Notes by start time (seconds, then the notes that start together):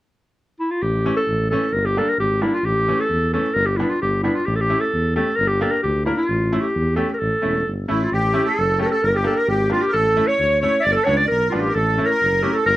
0.60 E4
0.71 F4
0.81 A1 G4
1.05 E3 A3 C#4
1.16 A4
1.27 A1
1.50 E3 A3 C#4 A4
1.72 G1 A#4
1.85 G4
1.97 G3 A#3 D4 A4
2.09 A#4
2.18 G#1 G4
2.42 G3 A#3 D4 E4
2.54 F4
2.63 A1 G4
2.88 E3 A3 C#4
3.00 A4
3.09 E2
3.33 E3 A3 C#4 A4
3.54 G1 A#4
3.66 G4
3.77 G3 B3 D4 E4
3.90 F4
4.02 G1 G4
4.23 G3 B3 D4 E4
4.35 F4
4.46 A1 G4
4.55 A4
4.60 G4
4.70 A3 C#4 E4
4.80 A4
4.93 E2
5.16 A3 C#4 G4 A4
5.36 G1 A#4
5.48 G4
5.61 A#3 D4 G4 A4
5.71 A#4
5.83 D2 G4
6.05 A#3 D4 E4 A#4
6.17 F4
6.29 A1
6.52 A3 C#4 E4
6.62 G4
6.75 E2
6.96 A3 C#4 G4 A4
7.14 A#4
7.19 A1 A4
7.42 E1 A3 C#4 E4
7.66 G1
7.88 A1 A3 C#4 E4
8.02 F4
8.12 A1 G4
8.34 A3 C#4 E4
8.45 A4
8.58 F#1
8.79 A3 C#4 G4 A4
8.86 A#4
8.90 A4
9.02 G1 A#4
9.13 G4
9.24 A#3 D4 G4 A4
9.35 A#4
9.47 G#1 G4
9.70 A#3 D4 F4 G4
9.82 G4
9.88 A#4
9.93 A1 A4
10.17 A3 C#4 E4
10.27 C#5
10.39 D2
10.60 A3 C#4 E4 C#5
10.80 D5 E5
10.85 G1
10.93 A4
11.04 C#2 G3 B3 D4 C#5
11.17 D5
11.27 B1 A#4
11.50 A1 G3 B3 D4 F4
11.60 G4
11.67 A#4
11.74 A1 A4
11.98 A3 C#4 E4
12.02 C#5
12.06 A#4
12.21 F#1
12.43 A3 C#4 E4 G4
12.53 A4
12.65 G1 A#4